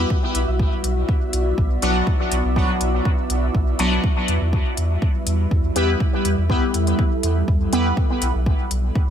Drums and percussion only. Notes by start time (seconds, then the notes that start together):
0.10 kick
0.35 closed hi-hat
0.59 kick
0.84 closed hi-hat
1.09 kick
1.33 closed hi-hat
1.58 kick
1.82 closed hi-hat
2.07 kick
2.32 closed hi-hat
2.56 kick
2.81 closed hi-hat
3.05 kick
3.30 closed hi-hat
3.55 kick
3.79 closed hi-hat
4.04 kick
4.28 closed hi-hat
4.53 kick
4.77 closed hi-hat
5.02 kick
5.27 closed hi-hat
5.51 kick
5.76 closed hi-hat
6.00 kick
6.25 closed hi-hat
6.50 kick
6.74 closed hi-hat
6.87 closed hi-hat
6.99 kick
7.23 closed hi-hat
7.48 kick
7.73 closed hi-hat
7.97 kick
8.22 closed hi-hat
8.46 kick
8.71 closed hi-hat
8.95 kick